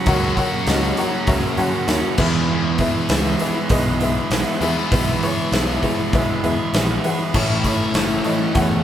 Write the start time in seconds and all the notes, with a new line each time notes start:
Already playing: A#3 C#4 F#4
0.06 C#2 F#2 C#3 F#3 A#3 C#4 F#4 A#4 C#5 F#5, kick, open hi-hat
0.22 snare
0.37 F#4 A#4 C#5 F#5, kick, open hi-hat
0.67 C#2 C#4 F#4 A#4 C#5 D#5, snare, open hi-hat
0.97 F#3 F#4 A#4 C#5 F#5, open hi-hat
1.27 C#2 A#3 F#4 A#4 C#5 E5, kick, open hi-hat
1.57 F#2 F#4 A#4 C#5 F#5, open hi-hat
1.87 D#2 C#4 F#4 A#4 C#5 E5, snare, open hi-hat
2.18 E2 E3 G#3 B3 E4 G#4 B4 E5, kick, snare, crash
2.49 E2
2.78 E4 G#4 B4 E5, kick, open hi-hat
3.08 C#2 B3 E4 G#4 B4 E5, snare, open hi-hat
3.39 E3 E4 G#4 B4 E5, open hi-hat
3.69 B1 G#3 E4 G#4 B4 D#5, kick, open hi-hat
4.00 E4 G#4 B4 E5, open hi-hat
4.30 B1 B3 E4 G#4 B4 E5, snare, open hi-hat
4.61 E2 E3 G#3 B3 E4 G#4 B4 E5, open hi-hat
4.92 B1 E2 E4 G#4 B4 E5, kick, open hi-hat
5.22 E4 G#4 B4 C#5, open hi-hat
5.52 B1 B3 E4 G#4 B4 E5, snare, open hi-hat
5.83 E3 E4 G#4 B4 E5, kick, open hi-hat
6.13 B1 G#3 E4 G#4 B4 E5, kick, open hi-hat
6.43 E2 E4 G#4 B4 E5, open hi-hat
6.73 A#1 B3 E4 G#4 B4 E5, snare, open hi-hat
7.04 E4 G#4 B4 F#5, open hi-hat
7.34 A1 A2 E3 A3 C#4 E4 A4 C#5 E5, kick, crash
7.50 snare
7.64 E4 A4 C#5 E5, kick, snare, open hi-hat
7.94 F#1 C#4 E4 A4 C#5 E5, snare, open hi-hat
8.24 E3 E4 A4 C#5 D#5, open hi-hat
8.54 E2 E4 A4 C#5 F#5, kick, open hi-hat
8.58 A3